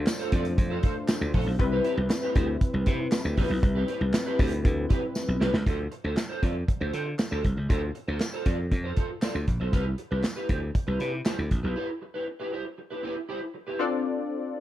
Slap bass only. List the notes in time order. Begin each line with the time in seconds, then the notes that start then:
0.32 F2
0.58 F2
1.21 D2
1.34 A#1
1.46 B1
1.60 C2
1.97 C2
2.36 D2
2.74 C2
2.87 C3
3.25 D2
3.38 A#1
3.50 B1
3.63 C2
4.01 C2
4.39 D2
4.65 D2
5.28 B1
5.41 C2
5.54 C#2
5.67 D2
6.04 D2
6.43 F2
6.81 D2
6.94 D3
7.32 D2
7.45 C2
7.57 C#2
7.70 D2
8.08 D2
8.46 F2
8.72 F2
9.35 D2
9.48 A#1
9.60 B1
9.73 C2
10.11 C2
10.49 D2
10.87 C2
11.00 C3
11.38 D2
11.51 A#1
11.64 B1